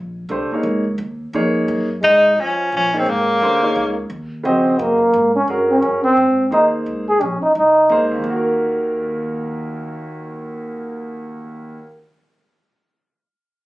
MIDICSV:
0, 0, Header, 1, 6, 480
1, 0, Start_track
1, 0, Tempo, 345026
1, 1383, Time_signature, 3, 2, 24, 8
1, 18990, End_track
2, 0, Start_track
2, 0, Title_t, "Grand piano"
2, 0, Program_c, 0, 0
2, 413, Note_on_c, 0, 57, 57
2, 414, Note_on_c, 0, 62, 50
2, 429, Note_on_c, 0, 67, 45
2, 437, Note_on_c, 0, 72, 59
2, 690, Note_off_c, 0, 57, 0
2, 691, Note_off_c, 0, 62, 0
2, 699, Note_off_c, 0, 67, 0
2, 702, Note_off_c, 0, 72, 0
2, 729, Note_on_c, 0, 58, 49
2, 740, Note_on_c, 0, 63, 47
2, 740, Note_on_c, 0, 68, 47
2, 753, Note_on_c, 0, 73, 52
2, 1146, Note_off_c, 0, 58, 0
2, 1152, Note_off_c, 0, 63, 0
2, 1152, Note_off_c, 0, 68, 0
2, 1159, Note_off_c, 0, 73, 0
2, 1869, Note_on_c, 0, 58, 59
2, 1871, Note_on_c, 0, 63, 51
2, 1877, Note_on_c, 0, 68, 60
2, 1885, Note_on_c, 0, 73, 70
2, 2588, Note_off_c, 0, 58, 0
2, 2589, Note_off_c, 0, 63, 0
2, 2592, Note_off_c, 0, 68, 0
2, 2596, Note_off_c, 0, 73, 0
2, 4076, Note_on_c, 0, 58, 56
2, 4081, Note_on_c, 0, 63, 59
2, 4098, Note_on_c, 0, 73, 65
2, 4100, Note_on_c, 0, 68, 55
2, 4240, Note_off_c, 0, 58, 0
2, 4242, Note_off_c, 0, 63, 0
2, 4251, Note_off_c, 0, 68, 0
2, 4251, Note_off_c, 0, 73, 0
2, 4752, Note_on_c, 0, 57, 61
2, 4756, Note_on_c, 0, 62, 55
2, 4762, Note_on_c, 0, 67, 52
2, 4773, Note_on_c, 0, 72, 69
2, 5019, Note_off_c, 0, 57, 0
2, 5021, Note_off_c, 0, 62, 0
2, 5024, Note_off_c, 0, 67, 0
2, 5030, Note_off_c, 0, 72, 0
2, 5042, Note_on_c, 0, 58, 57
2, 5048, Note_on_c, 0, 63, 50
2, 5055, Note_on_c, 0, 68, 53
2, 5063, Note_on_c, 0, 73, 63
2, 5462, Note_off_c, 0, 58, 0
2, 5465, Note_off_c, 0, 63, 0
2, 5468, Note_off_c, 0, 68, 0
2, 5473, Note_off_c, 0, 73, 0
2, 6170, Note_on_c, 0, 49, 60
2, 6182, Note_on_c, 0, 66, 54
2, 6195, Note_on_c, 0, 75, 65
2, 6197, Note_on_c, 0, 72, 56
2, 6897, Note_off_c, 0, 49, 0
2, 6903, Note_off_c, 0, 66, 0
2, 6910, Note_off_c, 0, 75, 0
2, 6911, Note_off_c, 0, 72, 0
2, 7638, Note_on_c, 0, 68, 58
2, 7642, Note_on_c, 0, 61, 50
2, 7649, Note_on_c, 0, 66, 53
2, 7656, Note_on_c, 0, 70, 64
2, 8351, Note_off_c, 0, 68, 0
2, 8353, Note_off_c, 0, 61, 0
2, 8356, Note_off_c, 0, 66, 0
2, 8359, Note_off_c, 0, 70, 0
2, 9052, Note_on_c, 0, 58, 55
2, 9058, Note_on_c, 0, 63, 47
2, 9067, Note_on_c, 0, 68, 52
2, 9073, Note_on_c, 0, 72, 63
2, 9777, Note_off_c, 0, 58, 0
2, 9780, Note_off_c, 0, 63, 0
2, 9785, Note_off_c, 0, 68, 0
2, 9788, Note_off_c, 0, 72, 0
2, 10985, Note_on_c, 0, 63, 57
2, 10987, Note_on_c, 0, 58, 64
2, 10995, Note_on_c, 0, 68, 52
2, 11014, Note_on_c, 0, 72, 70
2, 11287, Note_on_c, 0, 39, 61
2, 11378, Note_on_c, 0, 51, 51
2, 11438, Note_off_c, 0, 58, 0
2, 11459, Note_on_c, 0, 58, 53
2, 11462, Note_off_c, 0, 63, 0
2, 11466, Note_off_c, 0, 68, 0
2, 11476, Note_off_c, 0, 72, 0
2, 11548, Note_on_c, 0, 66, 58
2, 11635, Note_on_c, 0, 70, 61
2, 16341, Note_off_c, 0, 39, 0
2, 16386, Note_off_c, 0, 51, 0
2, 16427, Note_off_c, 0, 58, 0
2, 16471, Note_off_c, 0, 66, 0
2, 16515, Note_off_c, 0, 70, 0
2, 18990, End_track
3, 0, Start_track
3, 0, Title_t, "Tenor saxophone"
3, 0, Program_c, 1, 66
3, 2837, Note_on_c, 1, 63, 110
3, 3335, Note_on_c, 1, 61, 90
3, 3356, Note_off_c, 1, 63, 0
3, 3798, Note_off_c, 1, 61, 0
3, 3845, Note_on_c, 1, 61, 88
3, 4150, Note_on_c, 1, 60, 78
3, 4171, Note_off_c, 1, 61, 0
3, 4315, Note_on_c, 1, 58, 80
3, 4336, Note_off_c, 1, 60, 0
3, 5550, Note_off_c, 1, 58, 0
3, 18990, End_track
4, 0, Start_track
4, 0, Title_t, "Trombone"
4, 0, Program_c, 2, 57
4, 2811, Note_on_c, 2, 56, 76
4, 3304, Note_on_c, 2, 53, 75
4, 3325, Note_off_c, 2, 56, 0
4, 3783, Note_off_c, 2, 53, 0
4, 3797, Note_on_c, 2, 53, 64
4, 4094, Note_on_c, 2, 51, 68
4, 4115, Note_off_c, 2, 53, 0
4, 4274, Note_on_c, 2, 49, 56
4, 4295, Note_off_c, 2, 51, 0
4, 5530, Note_off_c, 2, 49, 0
4, 6189, Note_on_c, 2, 60, 76
4, 6683, Note_on_c, 2, 58, 72
4, 6704, Note_off_c, 2, 60, 0
4, 7438, Note_off_c, 2, 58, 0
4, 7446, Note_on_c, 2, 61, 82
4, 7609, Note_off_c, 2, 61, 0
4, 7940, Note_on_c, 2, 61, 79
4, 8378, Note_off_c, 2, 61, 0
4, 8400, Note_on_c, 2, 60, 94
4, 9012, Note_off_c, 2, 60, 0
4, 9093, Note_on_c, 2, 63, 79
4, 9265, Note_off_c, 2, 63, 0
4, 9858, Note_on_c, 2, 68, 94
4, 10042, Note_on_c, 2, 61, 77
4, 10063, Note_off_c, 2, 68, 0
4, 10317, Note_off_c, 2, 61, 0
4, 10325, Note_on_c, 2, 63, 78
4, 10488, Note_off_c, 2, 63, 0
4, 10524, Note_on_c, 2, 63, 83
4, 11240, Note_off_c, 2, 63, 0
4, 18990, End_track
5, 0, Start_track
5, 0, Title_t, "Upright bass"
5, 0, Program_c, 3, 32
5, 0, Note_on_c, 3, 34, 80
5, 393, Note_off_c, 3, 34, 0
5, 401, Note_on_c, 3, 36, 83
5, 693, Note_off_c, 3, 36, 0
5, 881, Note_on_c, 3, 37, 84
5, 1354, Note_off_c, 3, 37, 0
5, 1363, Note_on_c, 3, 39, 85
5, 1838, Note_off_c, 3, 39, 0
5, 1856, Note_on_c, 3, 41, 83
5, 2325, Note_off_c, 3, 41, 0
5, 2340, Note_on_c, 3, 42, 82
5, 2807, Note_off_c, 3, 42, 0
5, 2821, Note_on_c, 3, 44, 81
5, 3287, Note_off_c, 3, 44, 0
5, 3305, Note_on_c, 3, 41, 75
5, 3769, Note_off_c, 3, 41, 0
5, 3787, Note_on_c, 3, 34, 86
5, 4250, Note_off_c, 3, 34, 0
5, 4259, Note_on_c, 3, 32, 86
5, 4719, Note_off_c, 3, 32, 0
5, 4727, Note_on_c, 3, 39, 74
5, 5199, Note_off_c, 3, 39, 0
5, 5225, Note_on_c, 3, 37, 83
5, 5688, Note_off_c, 3, 37, 0
5, 5700, Note_on_c, 3, 39, 82
5, 6166, Note_off_c, 3, 39, 0
5, 6192, Note_on_c, 3, 41, 79
5, 6651, Note_off_c, 3, 41, 0
5, 6668, Note_on_c, 3, 42, 89
5, 7130, Note_off_c, 3, 42, 0
5, 7144, Note_on_c, 3, 44, 86
5, 7607, Note_off_c, 3, 44, 0
5, 7619, Note_on_c, 3, 43, 78
5, 8085, Note_off_c, 3, 43, 0
5, 8102, Note_on_c, 3, 42, 80
5, 8566, Note_off_c, 3, 42, 0
5, 8583, Note_on_c, 3, 44, 83
5, 9046, Note_off_c, 3, 44, 0
5, 9071, Note_on_c, 3, 39, 79
5, 9531, Note_off_c, 3, 39, 0
5, 9547, Note_on_c, 3, 37, 78
5, 10008, Note_off_c, 3, 37, 0
5, 10027, Note_on_c, 3, 34, 84
5, 10305, Note_off_c, 3, 34, 0
5, 10506, Note_on_c, 3, 36, 78
5, 10968, Note_off_c, 3, 36, 0
5, 10982, Note_on_c, 3, 37, 78
5, 11446, Note_off_c, 3, 37, 0
5, 11461, Note_on_c, 3, 39, 78
5, 16372, Note_off_c, 3, 39, 0
5, 18990, End_track
6, 0, Start_track
6, 0, Title_t, "Muted upright bass strokes"
6, 716, Note_on_c, 9, 29, 33
6, 856, Note_off_c, 9, 29, 0
6, 10324, Note_on_c, 9, 29, 36
6, 10463, Note_off_c, 9, 29, 0
6, 18990, End_track
0, 0, End_of_file